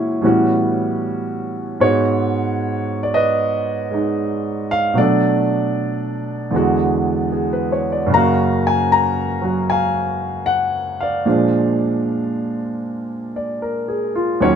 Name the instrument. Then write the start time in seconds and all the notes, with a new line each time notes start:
grand piano
Already playing: A#2 E3 G#3 C#4 E4 F#4 C#5 G#5
0.21 A2 E3 G3 B3 C#4
0.26 F#4
1.80 G#2 G#3 B3 F#4 C#5
3.03 D5
3.14 B4 D#5
3.91 G#3 D#4
4.71 F5
4.94 B2 F#3 A3
4.98 D4 A4 D5
6.51 E2 D3 G#3
6.56 F#4
7.32 G#4
7.53 B4
7.72 C#5
7.92 D5
8.07 F#2 C#3
8.13 A#3 F#4 F5 A#5
8.67 G#5
8.92 A#5
9.42 F#3 F#4
9.70 F5 G#5
10.46 F#5
11.01 D5 F5
11.26 A#2 F3 G#3 D4
13.36 D5
13.62 A#4
13.88 G#4
14.15 F4
14.40 D#2 D#3 F#3 C#4 F#4 C#5